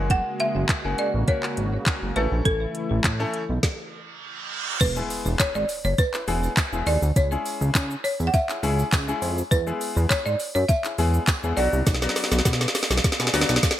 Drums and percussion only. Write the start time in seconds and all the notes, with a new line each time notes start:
0.10 kick, closed hi-hat
0.40 closed hi-hat
0.69 kick, clap, closed hi-hat
0.98 closed hi-hat
1.28 kick, closed hi-hat
1.43 clap
1.57 closed hi-hat
1.86 kick, clap, closed hi-hat
2.16 closed hi-hat
2.45 kick, closed hi-hat
2.75 closed hi-hat
3.04 kick, clap, closed hi-hat
3.34 closed hi-hat
3.63 kick, snare
4.81 kick, closed hi-hat, crash, tambourine, shaker
4.96 shaker
5.10 open hi-hat, tambourine, shaker
5.26 shaker
5.39 kick, clap, closed hi-hat, tambourine, shaker
5.55 shaker
5.69 open hi-hat, tambourine, shaker
5.84 shaker
5.98 kick, closed hi-hat, tambourine, shaker
6.14 clap, tambourine, shaker
6.28 open hi-hat, tambourine, shaker
6.43 tambourine, shaker
6.57 kick, clap, closed hi-hat, tambourine, shaker
6.73 shaker
6.87 open hi-hat, tambourine, shaker
7.02 tambourine, shaker
7.16 kick, closed hi-hat, tambourine, shaker
7.32 shaker
7.46 open hi-hat, tambourine, shaker
7.62 shaker
7.75 kick, clap, closed hi-hat, tambourine, shaker
7.91 shaker
8.04 open hi-hat, tambourine, shaker
8.20 tambourine, shaker
8.34 kick, closed hi-hat, tambourine, shaker
8.49 clap, tambourine, shaker
8.63 open hi-hat, tambourine, shaker
8.79 tambourine, shaker
8.93 kick, clap, closed hi-hat, tambourine, shaker
9.08 shaker
9.22 open hi-hat, tambourine, shaker
9.38 tambourine, shaker
9.52 kick, closed hi-hat, tambourine, shaker
9.67 shaker
9.81 open hi-hat, tambourine, shaker
9.97 shaker
10.10 kick, clap, closed hi-hat, tambourine, shaker
10.26 shaker
10.40 open hi-hat, tambourine, shaker
10.55 shaker
10.69 kick, closed hi-hat, tambourine, shaker
10.84 clap, tambourine, shaker
10.98 open hi-hat, tambourine, shaker
11.14 shaker
11.27 kick, clap, closed hi-hat, tambourine, shaker
11.43 shaker
11.57 open hi-hat, tambourine, shaker
11.73 shaker
11.87 kick, snare, closed hi-hat, tambourine, shaker
11.94 snare
12.02 snare, shaker
12.09 snare
12.16 snare, open hi-hat, tambourine, shaker
12.24 snare
12.32 snare, shaker
12.39 snare
12.45 kick, snare, closed hi-hat, tambourine, shaker
12.53 snare
12.61 snare, shaker
12.68 snare
12.75 snare, open hi-hat, tambourine, shaker
12.83 snare
12.91 snare, shaker
12.97 snare
13.04 kick, snare, closed hi-hat, tambourine, shaker
13.12 snare
13.20 snare, shaker
13.27 snare
13.34 snare, open hi-hat, tambourine, shaker
13.41 snare
13.49 snare, tambourine, shaker
13.56 snare
13.63 kick, snare, closed hi-hat, tambourine, shaker
13.71 snare